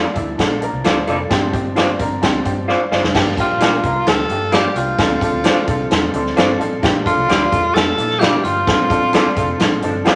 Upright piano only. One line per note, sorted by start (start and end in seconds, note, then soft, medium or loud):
0.00 0.10 A#3 medium
0.00 0.11 D4 medium
0.00 0.11 F4 medium
0.15 0.33 F3 medium
0.15 0.33 A#3 medium
0.15 0.34 D4 medium
0.15 0.34 E4 medium
0.38 0.56 F3 loud
0.38 0.57 A#3 loud
0.38 0.57 D4 medium
0.38 0.57 A4 loud
0.61 0.79 F3 medium
0.61 0.80 A#3 medium
0.61 0.80 D4 medium
0.61 0.80 A#4 medium
0.84 1.02 F3 medium
0.84 1.03 A#3 medium
0.84 1.03 D4 medium
0.84 1.03 C5 medium
1.07 1.25 F3 medium
1.07 1.26 A#3 medium
1.07 1.26 D4 medium
1.07 1.26 A4 medium
1.29 1.48 F3 loud
1.29 1.48 C4 loud
1.29 1.49 D4 loud
1.29 1.49 G4 loud
1.52 1.71 F3 medium
1.52 1.71 C4 medium
1.52 1.72 D4 medium
1.52 1.72 G4 medium
1.75 1.94 F3 medium
1.75 1.94 C4 medium
1.75 1.95 D4 medium
1.75 1.95 G4 medium
1.98 2.17 F3 medium
1.98 2.17 C4 medium
1.98 2.18 D4 medium
1.98 2.18 A#4 medium
2.22 2.40 F3 loud
2.22 2.40 C4 loud
2.22 2.41 D4 loud
2.22 2.41 G4 loud
2.44 2.63 F3 medium
2.44 2.63 C4 medium
2.44 2.64 D4 medium
2.44 2.64 G4 medium
2.68 2.90 F5 medium
2.92 3.36 D5 medium
3.14 3.32 F3 loud
3.14 3.33 A#3 loud
3.14 3.33 D4 loud
3.14 3.33 G4 loud
3.38 3.56 F3 medium
3.38 3.56 A#3 medium
3.38 3.56 D4 medium
3.38 3.57 G4 loud
3.60 3.79 F3 medium
3.60 3.79 A#3 medium
3.60 3.79 D4 medium
3.60 3.79 G4 medium
3.84 4.02 F3 medium
3.84 4.02 A#3 medium
3.84 4.02 D4 medium
3.84 4.03 A#4 medium
4.06 4.25 F3 medium
4.06 4.25 A#3 medium
4.06 4.25 D4 medium
4.06 4.26 G4 medium
4.29 4.47 F3 medium
4.29 4.48 A#3 medium
4.29 4.48 D4 medium
4.29 4.49 G4 medium
4.52 4.71 F3 loud
4.52 4.71 A#3 medium
4.52 4.71 D4 medium
4.52 4.72 G4 loud
4.76 4.94 F3 medium
4.76 4.94 A#3 medium
4.76 4.94 D4 medium
4.76 4.95 G4 medium
4.99 5.17 F3 medium
4.99 5.17 C4 medium
4.99 5.18 D4 medium
4.99 5.18 A4 loud
5.20 5.39 F3 medium
5.20 5.40 C4 medium
5.20 5.40 D4 medium
5.20 5.40 A4 loud
5.44 5.62 F3 medium
5.44 5.63 C4 medium
5.44 5.63 D4 medium
5.44 5.63 A4 loud
5.66 5.85 F3 medium
5.66 5.85 C4 medium
5.66 5.86 D4 medium
5.66 5.86 A4 loud
5.90 6.08 F3 medium
5.90 6.09 C4 medium
5.90 6.09 D4 medium
5.90 6.09 A4 medium
6.14 6.32 F3 medium
6.14 6.32 C4 medium
6.14 6.32 D4 medium
6.14 6.33 A4 medium
6.14 6.36 C6 medium
6.36 6.55 F3 loud
6.36 6.55 C4 loud
6.36 6.55 D4 loud
6.36 6.56 A4 loud
6.36 6.59 A5 medium
6.58 6.77 F3 medium
6.58 6.78 C4 medium
6.58 6.78 D4 medium
6.58 6.78 A4 loud
6.58 6.81 F5 medium
6.82 7.00 F3 loud
6.82 7.01 A#3 loud
6.82 7.01 D4 loud
6.82 7.01 G4 loud
7.05 7.23 F3 medium
7.05 7.24 A#3 medium
7.05 7.24 D4 medium
7.05 7.24 A4 loud
7.28 7.47 F3 medium
7.28 7.47 A#3 medium
7.28 7.47 D4 medium
7.28 7.47 G4 medium
7.52 7.70 F3 medium
7.52 7.70 A#3 medium
7.52 7.70 D4 medium
7.52 7.71 A4 medium
7.75 7.93 F3 medium
7.75 7.93 A#3 medium
7.75 7.94 D4 medium
7.75 7.94 G4 medium
7.97 8.16 F3 medium
7.97 8.16 A#3 medium
7.97 8.16 D4 medium
7.97 8.17 E4 medium
8.19 8.38 F3 loud
8.19 8.38 A#3 medium
8.19 8.39 D4 medium
8.19 8.39 E4 loud
8.43 8.62 F3 medium
8.43 8.62 A#3 medium
8.43 8.62 D4 medium
8.43 8.63 G4 medium
8.67 8.85 F3 loud
8.67 8.85 C4 medium
8.67 8.85 D4 medium
8.67 8.86 A4 loud
8.90 9.08 F3 loud
8.90 9.08 C4 medium
8.90 9.08 D4 medium
8.90 9.09 A4 loud
9.12 9.31 F3 medium
9.12 9.31 C4 medium
9.12 9.32 D4 medium
9.12 9.32 A4 loud
9.36 9.54 F3 medium
9.36 9.54 C4 medium
9.36 9.55 D4 medium
9.36 9.55 A4 loud
9.59 9.77 F3 medium
9.59 9.77 C4 medium
9.59 9.78 D4 medium
9.59 9.78 A4 loud
9.81 10.00 F3 medium
9.81 10.00 C4 medium
9.81 10.00 D4 medium
9.81 10.01 A4 medium
10.04 10.15 F3 loud
10.04 10.15 C4 loud
10.04 10.15 D4 loud
10.04 10.15 G4 loud